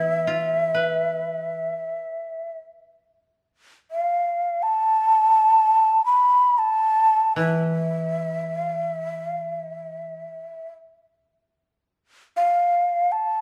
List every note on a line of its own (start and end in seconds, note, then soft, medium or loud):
0.00 1.68 E3 soft
0.00 1.22 B3 soft
0.00 1.69 E4 soft
0.00 2.58 E5 medium
0.27 2.16 F4 soft
0.75 2.65 B4 soft
3.91 4.64 F5 medium
4.63 6.04 A5 medium
6.06 6.60 B5 medium
6.58 7.36 A5 medium
7.36 10.20 E3 soft
7.36 8.59 E5 medium
8.59 8.84 F5 medium
8.84 9.26 E5 medium
9.26 9.51 F5 medium
9.51 10.71 E5 medium
12.36 13.13 F5 medium
13.12 13.41 A5 medium